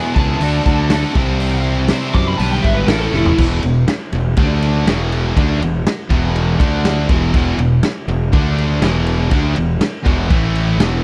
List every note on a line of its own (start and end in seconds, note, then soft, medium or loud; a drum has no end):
0.00 0.15 E2 medium
0.00 0.39 E2 medium
0.00 0.39 B2 medium
0.00 0.16 E3 medium
0.00 0.41 E3 medium
0.00 0.16 G#3 medium
0.00 0.18 B3 medium
0.00 0.18 E4 loud
0.00 0.18 G#4 medium
0.00 0.15 G#5 medium
0.15 0.35 C#2 loud
0.15 0.40 E2 medium
0.15 0.40 E3 medium
0.15 0.40 G#3 medium
0.15 0.41 B3 medium
0.15 0.41 E4 medium
0.15 1.60 A5 medium
0.15 kick medium
0.19 0.41 G#4 medium
0.40 0.59 D2 medium
0.40 0.90 D3 medium
0.40 1.14 A3 medium
0.40 0.90 D4 loud
0.40 0.92 F#4 loud
0.40 0.92 A4 loud
0.40 open hi-hat medium
0.66 1.03 D2 medium
0.66 kick medium
0.66 snare soft
0.90 1.14 D3 medium
0.90 1.14 D4 medium
0.90 1.15 F#4 medium
0.90 1.15 A4 medium
0.90 snare loud
0.90 open hi-hat medium
1.15 1.90 C2 medium
1.15 1.38 C3 loud
1.15 1.39 E3 loud
1.15 1.39 G3 loud
1.15 1.40 C4 loud
1.15 1.40 E4 loud
1.15 1.40 C5 loud
1.15 kick loud
1.39 1.88 C3 loud
1.39 1.89 E3 loud
1.39 1.89 G3 loud
1.39 1.90 C4 loud
1.39 1.90 E4 loud
1.39 1.90 C5 loud
1.39 open hi-hat medium
1.88 2.12 C3 medium
1.88 2.13 E3 medium
1.88 2.13 G3 medium
1.88 2.14 C4 medium
1.88 2.14 E4 loud
1.88 2.15 C5 loud
1.88 snare loud
1.88 open hi-hat medium
2.13 2.33 F#2 loud
2.13 2.37 C3 medium
2.13 2.37 E3 loud
2.13 2.38 G3 loud
2.13 2.38 C4 medium
2.13 2.38 E4 medium
2.13 2.39 C5 medium
2.13 2.27 D6 loud
2.13 kick medium
2.27 2.38 B5 loud
2.38 2.58 B1 loud
2.38 2.87 G2 medium
2.38 2.88 D3 medium
2.38 2.87 B3 loud
2.38 2.87 D4 loud
2.38 2.87 G4 loud
2.38 2.88 B4 loud
2.38 2.50 A5 loud
2.38 open hi-hat medium
2.43 2.89 G3 loud
2.51 2.63 G5 loud
2.62 2.83 G#1 loud
2.62 2.75 E5 medium
2.62 kick medium
2.62 snare soft
2.74 2.87 B4 medium
2.86 3.06 A1 loud
2.86 3.10 A2 medium
2.86 3.37 E3 loud
2.86 3.10 A3 loud
2.86 3.11 C#4 medium
2.86 3.11 E4 medium
2.86 3.12 A4 loud
2.86 2.99 A#4 medium
2.86 snare loud
2.86 open hi-hat medium
2.93 3.39 A3 loud
2.99 3.12 A4 loud
3.11 3.31 F1 medium
3.11 3.35 A2 medium
3.11 3.36 A3 medium
3.11 3.36 C#4 loud
3.11 3.36 E4 medium
3.11 3.36 A4 medium
3.11 snare medium
3.15 3.38 E4 loud
3.25 floor tom medium
3.36 3.61 E1 medium
3.36 3.61 E2 loud
3.36 3.61 B2 loud
3.36 3.62 E3 loud
3.36 kick loud
3.36 crash loud
3.63 3.86 E1 medium
3.63 3.82 E2 medium
3.63 3.83 B2 medium
3.63 ride medium
3.88 snare loud
3.88 ride loud
4.12 4.35 E1 medium
4.12 4.33 E2 medium
4.12 4.33 B2 medium
4.12 ride medium
4.37 4.83 D2 medium
4.37 4.86 D3 medium
4.37 4.86 A3 loud
4.37 4.87 D4 medium
4.37 kick loud
4.37 ride loud
4.62 snare soft
4.62 ride medium
4.86 5.32 E1 loud
4.86 5.35 E2 medium
4.86 5.36 B2 medium
4.86 5.36 E3 medium
4.86 snare loud
4.86 ride loud
5.12 ride medium
5.36 5.59 D2 medium
5.36 5.60 D3 loud
5.36 5.61 A3 loud
5.36 5.61 D4 loud
5.36 kick loud
5.36 ride loud
5.61 5.84 E1 medium
5.61 5.80 E2 medium
5.61 5.80 B2 medium
5.61 ride medium
5.87 snare loud
5.87 ride loud
6.10 6.56 E1 loud
6.10 6.58 E2 loud
6.10 6.58 B2 loud
6.10 6.60 E3 medium
6.10 kick medium
6.10 ride medium
6.36 ride medium
6.59 7.05 D2 medium
6.59 7.08 D3 medium
6.59 7.08 A3 loud
6.59 7.08 D4 medium
6.59 kick loud
6.59 snare soft
6.59 ride medium
6.85 snare loud
6.85 ride loud
7.08 7.32 E1 loud
7.08 7.32 E2 medium
7.08 7.32 B2 medium
7.08 7.33 E3 loud
7.08 kick loud
7.08 ride medium
7.34 7.57 E1 medium
7.34 7.58 E2 loud
7.34 7.58 B2 loud
7.34 7.58 E3 loud
7.34 kick loud
7.34 crash medium
7.58 7.81 E1 medium
7.58 7.78 E2 medium
7.58 7.79 B2 medium
7.58 ride medium
7.83 snare loud
7.83 ride medium
8.08 8.31 E1 medium
8.08 8.27 E2 medium
8.08 8.28 B2 medium
8.08 ride medium
8.32 8.79 D2 medium
8.32 8.81 D3 medium
8.32 8.81 A3 loud
8.32 8.82 D4 loud
8.32 kick loud
8.32 ride medium
8.58 ride medium
8.82 9.27 E1 medium
8.82 9.30 E2 medium
8.82 9.31 B2 medium
8.82 9.31 E3 loud
8.82 snare loud
8.82 ride loud
9.06 ride medium
9.31 9.55 D2 loud
9.31 9.55 D3 loud
9.31 9.56 A3 loud
9.31 9.57 D4 loud
9.31 kick loud
9.31 ride loud
9.56 9.79 E1 medium
9.56 9.75 E2 medium
9.56 9.75 B2 medium
9.56 ride medium
9.81 snare loud
9.81 ride loud
10.04 10.29 E1 loud
10.04 10.29 E2 medium
10.04 10.29 B2 medium
10.04 10.30 E3 loud
10.04 kick loud
10.04 ride medium
10.30 10.76 A1 medium
10.30 10.79 A2 medium
10.30 10.79 E3 medium
10.30 10.80 A3 loud
10.30 kick loud
10.30 ride medium
10.55 ride medium
10.78 11.02 E1 loud
10.78 11.03 E2 medium
10.78 11.04 B2 medium
10.78 11.04 E3 medium
10.78 snare loud
10.78 ride medium